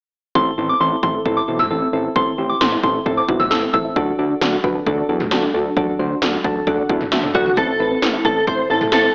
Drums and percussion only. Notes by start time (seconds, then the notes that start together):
0.35 kick
1.03 kick
1.26 kick
1.59 mid tom
2.16 kick
2.61 snare
2.83 kick
3.06 kick
3.29 kick
3.40 mid tom
3.51 snare
3.74 kick
3.96 kick
4.41 snare
4.64 kick
4.87 kick
5.20 mid tom
5.31 snare
5.77 kick
6.22 snare
6.44 kick
6.67 kick
6.89 kick
7.01 mid tom
7.12 snare
7.23 mid tom
7.35 kick
7.46 mid tom
7.57 kick
8.02 snare
8.25 kick
8.47 kick
8.81 mid tom
8.92 snare